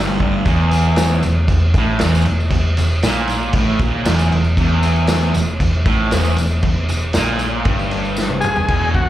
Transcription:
Already playing: picked electric bass G1, distorted electric guitar G2 D3
0.00 distorted electric guitar G3
0.20 distorted electric guitar G3, kick
0.24 distorted electric guitar D3
0.45 picked electric bass E1, distorted electric guitar E2, kick, tambourine, crash
0.71 tambourine, crash
0.85 tambourine
0.96 snare, tambourine, crash
1.22 picked electric bass E1, distorted electric guitar E2, tambourine, crash
1.48 picked electric bass E1, distorted electric guitar E2, kick, tambourine, crash
1.74 picked electric bass A1, distorted electric guitar A2, kick, tambourine, crash
1.99 picked electric bass E1, distorted electric guitar E2, snare, tambourine, crash
2.15 tambourine
2.26 picked electric bass E1, distorted electric guitar E2, crash
2.40 tambourine
2.50 picked electric bass E1, distorted electric guitar E2, kick, tambourine, crash
2.77 picked electric bass E1, distorted electric guitar E2, tambourine, crash
2.91 tambourine
3.02 picked electric bass A#1, distorted electric guitar A#2, snare, tambourine, crash
3.28 tambourine, crash
3.53 picked electric bass A1, distorted electric guitar A2, kick, tambourine, crash
3.79 picked electric bass A#1, distorted electric guitar A#2, kick, tambourine, crash
4.05 picked electric bass E1, distorted electric guitar E2, snare, tambourine, crash
4.19 tambourine
4.32 picked electric bass E1, distorted electric guitar E2, crash
4.44 tambourine
4.57 picked electric bass E1, distorted electric guitar E2, kick, tambourine, crash
4.83 tambourine, crash
4.96 tambourine
5.07 snare, tambourine, crash
5.34 picked electric bass E1, distorted electric guitar E2, tambourine, crash
5.60 picked electric bass E1, distorted electric guitar E2, kick, tambourine, crash
5.85 picked electric bass A1, distorted electric guitar A2, kick, tambourine, crash
6.11 picked electric bass E1, distorted electric guitar E2, snare, tambourine, crash
6.25 tambourine
6.37 picked electric bass E1, distorted electric guitar E2, tambourine, crash
6.52 tambourine
6.63 picked electric bass E1, distorted electric guitar E2, kick, crash
6.88 picked electric bass E1, distorted electric guitar E2, tambourine, crash
7.02 tambourine
7.13 picked electric bass A#1, distorted electric guitar A#2, snare, tambourine, crash
7.27 tambourine
7.39 tambourine, crash
7.65 picked electric bass G1, distorted electric guitar G2, kick, crash
7.79 tambourine
7.91 tambourine, crash
8.05 tambourine
8.16 snare, tambourine
8.30 high tom
8.41 transistor combo organ G#4, mid tom, tambourine
8.55 floor tom, tambourine
8.68 picked electric bass E1, distorted electric guitar E2 B2 E3, kick, crash
8.95 distorted electric guitar E2 B2, transistor combo organ F#4, kick

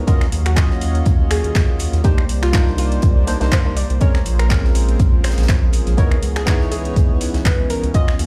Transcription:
0.07 analog synth pad F#3 A#3 C#5 F5, synth stab C#4 F4 F#4 D#5, synth pluck A#4, kick, closed hi-hat
0.21 finger snap, snare
0.32 analog synth bass D#2, closed hi-hat, open hi-hat
0.46 synth pluck F#4, finger snap, closed hi-hat
0.56 synth stab C#4 F4 F#4 D#5, kick, snare, clap, closed hi-hat
0.70 analog synth bass D#2, snare
0.81 closed hi-hat, open hi-hat
0.95 closed hi-hat
1.06 analog synth bass D#2, kick, closed hi-hat
1.31 synth pluck G#4, finger snap, closed hi-hat, open hi-hat
1.44 analog synth bass D#2, closed hi-hat
1.55 kick, snare, clap, closed hi-hat
1.69 analog synth bass D#2
1.79 closed hi-hat, open hi-hat
1.93 analog synth bass D#2, snare, closed hi-hat
2.04 synth stab A#3 D4 D#4 C5, analog synth pad G4 C5 D5, synth pluck G4, kick, closed hi-hat
2.18 finger snap
2.29 analog synth bass C2, closed hi-hat, open hi-hat
2.42 synth pluck F4, finger snap, snare, closed hi-hat
2.52 synth stab A#3 D4 D#4 C5, kick, snare, clap, closed hi-hat
2.67 analog synth bass C2, snare
2.78 synth pluck F4, closed hi-hat, open hi-hat
2.92 closed hi-hat
3.02 analog synth bass C2, kick, closed hi-hat
3.27 synth stab A#3 D4 D#4 C5, snare, closed hi-hat, open hi-hat
3.40 analog synth bass C2, synth stab A#3 D4 D#4 C5, snare, closed hi-hat
3.52 synth pluck C5, kick, snare, clap, closed hi-hat
3.65 analog synth bass C2, synth stab A#3 D4 D#4 C5
3.77 synth pluck D5, closed hi-hat, open hi-hat
3.90 analog synth bass C2, closed hi-hat
4.01 synth stab G#3 C4 C#4 A#4, analog synth pad F4 G#4, synth pluck C#5, kick, closed hi-hat
4.14 finger snap, snare
4.26 analog synth bass A#1, closed hi-hat, open hi-hat
4.39 synth pluck A#4, finger snap, closed hi-hat
4.49 synth stab G#3 C4 C#4 A#4, kick, snare, clap, closed hi-hat
4.64 analog synth bass A#1, snare
4.75 closed hi-hat, open hi-hat
4.89 closed hi-hat
4.99 analog synth bass A#1, kick, closed hi-hat
5.24 synth pluck C5, finger snap, snare, closed hi-hat, open hi-hat
5.31 snare, closed hi-hat
5.38 analog synth bass A#1, snare, closed hi-hat
5.43 snare, closed hi-hat
5.48 kick, snare, clap, closed hi-hat
5.62 analog synth bass A#1
5.73 closed hi-hat, open hi-hat
5.86 analog synth bass A#1, snare, closed hi-hat
5.97 analog synth pad E3 B3 C#4, synth stab B3 D#4 E4 C#5, synth pluck A#4, kick, closed hi-hat
6.11 finger snap
6.22 analog synth bass C#2, closed hi-hat, open hi-hat
6.36 synth pluck G#4, finger snap, snare, closed hi-hat
6.46 synth stab B3 D#4 E4 C#5, kick, snare, clap, closed hi-hat
6.61 analog synth bass C#2, snare
6.71 synth pluck G#4, closed hi-hat, open hi-hat
6.85 closed hi-hat
6.96 analog synth bass C#2, kick, closed hi-hat
7.21 snare, closed hi-hat, open hi-hat
7.34 analog synth bass C#2, snare, closed hi-hat
7.45 synth pluck B4, kick, snare, clap, closed hi-hat
7.59 analog synth bass C#2
7.70 synth pluck A#4, closed hi-hat, open hi-hat
7.84 analog synth bass C#2, closed hi-hat
7.94 analog synth pad F#3 A#3 F5, synth stab C#4 F4 F#4 D#5, synth pluck D#5, kick, closed hi-hat
8.08 finger snap, snare
8.19 analog synth bass D#2, closed hi-hat, open hi-hat

